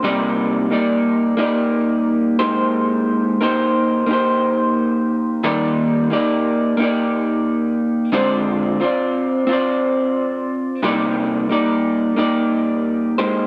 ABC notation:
X:1
M:4/4
L:1/8
Q:"Swing 16ths" 1/4=89
K:Cm
V:1 name="Clean electric guitar"
[C,G,B,EGd]2 [B,EGd]2 [B,EGd]3 [A,B,EGc]- | [A,B,EGc]2 [B,EGc]2 [B,EGc]4 | [E,G,B,EGd]2 [B,EGd]2 [B,EGd]4 | [D,A,CFcd]2 [CFcd]2 [CFcd]4 |
[C,G,B,EGd]2 [B,EGd]2 [B,EGd]3 [A,B,EGc] |]